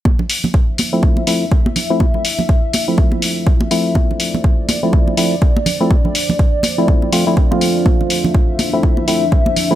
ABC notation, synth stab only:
X:1
M:4/4
L:1/16
Q:"Swing 16ths" 1/4=123
K:Dm
V:1 name="Synth stab"
z6 z [F,A,CE]3 [F,A,CE] z4 [F,A,CE] | z6 z [F,A,CE]6- [F,A,CE] [F,A,CE]2- | [F,A,CE]6- [F,A,CE] [F,A,CE]3 [F,A,CE] z4 [F,A,CE] | z6 z [F,A,CE]3 [F,A,CF] [F,A,CE] z [F,A,CF]3- |
[F,A,CF]6- [F,A,CF] [F,A,CE]3 [F,A,CE] z4 [F,A,CE] |]